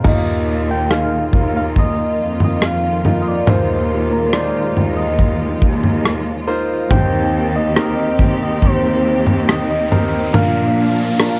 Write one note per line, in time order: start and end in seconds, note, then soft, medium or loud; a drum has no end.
0.04 1.29 D#2 medium
0.04 1.29 A#2 soft
0.04 6.87 D#3 medium
0.04 0.86 A#3 medium
0.04 3.45 A#3 soft
0.04 0.86 D#4 medium
0.04 0.86 F4 medium
0.04 6.88 F4 medium
0.04 0.86 A#4 medium
0.04 kick medium
0.04 floor tom medium
0.04 crash medium
0.08 0.72 D#5 medium
0.71 0.90 G5 medium
0.90 2.53 A#3 medium
0.90 2.53 D#4 medium
0.90 2.53 F4 soft
0.90 2.54 G#4 medium
0.90 1.51 F5 loud
0.90 cross-stick medium
1.33 1.94 D#2 medium
1.33 kick medium
1.33 floor tom soft
1.57 1.66 F5 medium
1.76 2.38 D#5 loud
1.76 kick medium
1.76 floor tom soft
2.20 3.44 F2 medium
2.40 floor tom medium
2.44 2.67 D#5 medium
2.62 3.21 F5 medium
2.62 cross-stick loud
3.05 3.45 A#3 medium
3.05 3.46 D#4 medium
3.05 3.45 F4 medium
3.05 3.46 A#4 medium
3.05 floor tom medium
3.22 3.30 D#5 medium
3.28 3.51 D5 medium
3.47 4.72 D#2 medium
3.47 4.72 A#2 medium
3.47 6.87 G#3 medium
3.47 4.29 A#3 medium
3.47 4.29 D#4 medium
3.47 4.29 F4 medium
3.47 4.29 C5 medium
3.47 4.14 C5 medium
3.47 floor tom loud
4.13 4.34 A#4 medium
4.33 5.96 A#3 medium
4.33 5.97 D#4 medium
4.33 5.97 F4 medium
4.33 5.97 C5 medium
4.33 4.98 D5 medium
4.33 cross-stick medium
4.76 5.58 D#2 medium
4.76 floor tom medium
4.97 6.26 D#5 medium
5.19 kick medium
5.19 floor tom soft
5.62 6.44 D#2 loud
5.62 kick medium
5.84 floor tom soft
6.05 cross-stick loud
6.47 6.88 A#3 medium
6.47 6.88 D#4 medium
6.47 6.88 F4 medium
6.47 6.88 C5 medium
6.89 8.15 D#2 loud
6.89 10.30 D#3 medium
6.89 8.16 D#3 medium
6.89 10.29 C4 medium
6.89 7.72 C4 medium
6.89 7.72 D#4 medium
6.89 10.29 G4 medium
6.89 7.72 G4 medium
6.89 7.73 C5 medium
6.89 7.51 G5 loud
6.89 kick medium
6.89 floor tom loud
6.89 riser medium
7.56 8.37 D#5 medium
7.76 9.39 C4 medium
7.76 9.39 D#4 medium
7.76 9.39 G4 medium
7.76 9.39 A#4 medium
7.76 cross-stick medium
8.19 10.29 D#2 medium
8.19 kick medium
8.19 floor tom medium
8.43 8.67 D#5 medium
8.62 9.50 C5 loud
8.62 kick medium
8.62 floor tom medium
9.27 floor tom medium
9.49 9.70 D#5 medium
9.49 cross-stick loud
9.70 10.36 D#5 medium
9.91 10.32 C4 medium
9.91 10.32 D#4 medium
9.91 10.32 G4 medium
9.91 10.32 A#4 medium
9.91 floor tom medium
10.33 11.40 A#2 loud
10.33 11.40 F3 medium
10.33 11.15 A#3 medium
10.33 11.40 A#3 medium
10.33 11.15 D4 medium
10.33 11.40 D4 medium
10.33 11.15 F4 medium
10.33 11.15 A#4 medium
10.33 11.40 F5 medium
10.33 floor tom loud
11.19 11.40 A#3 medium
11.19 11.40 D4 medium
11.19 11.40 F4 medium
11.19 11.40 A#4 medium
11.19 cross-stick medium